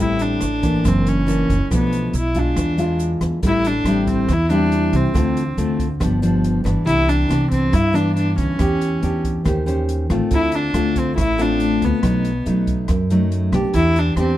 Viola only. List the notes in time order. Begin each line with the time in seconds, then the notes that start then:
0.01 E4
0.22 D4
0.88 C4
1.09 C#4
1.74 B3
2.19 E4
2.39 D4
3.47 E4
3.67 D4
4.11 C4
4.33 E4
4.53 D4
4.96 C4
6.87 E4
7.09 D4
7.52 C4
7.74 E4
7.95 D4
8.17 D4
8.39 C#4
10.35 E4
10.55 D4
10.99 C4
11.18 E4
11.42 D4
11.85 B3
13.75 E4
13.99 D4
14.19 C4